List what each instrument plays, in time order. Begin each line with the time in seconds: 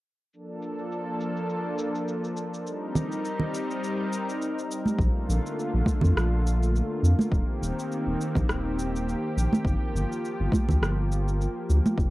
0.33 analog synth pad F3 A#3 D4 A4, cabasa
0.62 cabasa
0.78 cabasa
0.92 cabasa
1.21 cabasa
1.37 cabasa
1.50 cabasa
1.78 cabasa
1.95 cabasa
2.08 cabasa
2.24 cabasa
2.37 cabasa
2.54 cabasa
2.66 analog synth pad G3 C4 D#4 A#4, cabasa
2.95 low conga, cabasa
3.12 cabasa
3.25 cabasa
3.40 low conga
3.54 cabasa
3.71 cabasa
3.84 cabasa
4.13 cabasa
4.29 cabasa
4.42 cabasa
4.59 cabasa
4.71 cabasa
4.86 high conga, cabasa
4.99 analog synth bass A#1, analog synth pad D3 A3 A#3 F4, kick, cabasa
5.29 analog synth bass A#1, cabasa
5.46 cabasa
5.59 cabasa
5.74 analog synth bass A#1
5.86 kick, high conga, cabasa
6.01 analog synth bass F2, low conga, cabasa
6.16 analog synth bass A#1, cross-stick, cabasa
6.47 cabasa
6.63 cabasa
6.76 cabasa
7.03 analog synth bass F2, cabasa
7.19 high conga, cabasa
7.32 analog synth bass D#1, analog synth pad D#3 C4 G4, kick, cabasa
7.62 analog synth bass D#1, cabasa
7.79 cabasa
7.92 cabasa
8.07 analog synth bass D#1
8.21 cabasa
8.35 analog synth bass A#1, kick, low conga, cabasa
8.49 analog synth bass D#1, cross-stick, cabasa
8.79 cabasa
8.96 cabasa
9.09 cabasa
9.37 analog synth bass A#1, cabasa
9.53 high conga, cabasa
9.65 analog synth bass G1, analog synth pad F3, kick, cabasa
9.94 analog synth bass G1, cabasa
10.12 cabasa
10.25 cabasa
10.40 analog synth bass G1
10.52 kick, high conga, cabasa
10.69 analog synth bass D2, low conga, cabasa
10.81 analog synth bass G1, cross-stick, cabasa
11.12 cabasa
11.28 cabasa
11.41 cabasa
11.70 analog synth bass D2, cabasa
11.86 high conga, cabasa
11.98 analog synth bass F1, analog synth pad D#3 C4 F4, kick, cabasa